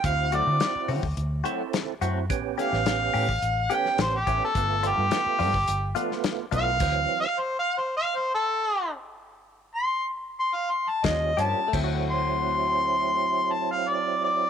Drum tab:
CC |----------------|----------------|----------------|x---------------|
HH |x-x-x-o-x-x-x-x-|x-x-x-o-x-x-x-x-|x-x-x-o-x-x-x-x-|x---------------|
SD |----o-------o---|---oo------oo---|----o------oo---|----------------|
BD |o------o--------|o------o------o-|o------o------o-|o---------------|

CC |----------------|x---------------|
HH |------------x-x-|----------------|
SD |------------o---|----------------|
BD |------------o---|o---------------|